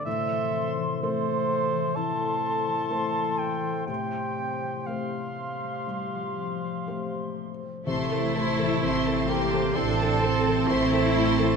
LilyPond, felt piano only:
\new Staff \with { instrumentName = "Felt piano" } { \time 4/4 \key a \phrygian \tempo 4 = 63 a,4 <a a' c''>4 e4 <a a' c''>4 | a,4 <a g' c''>4 g4 <a g' c''>4 | c16 a'16 c''16 a'16 c''16 a'16 a'16 a'16 e16 a'16 c''16 a'16 c''16 a'16 a16 a'16 | }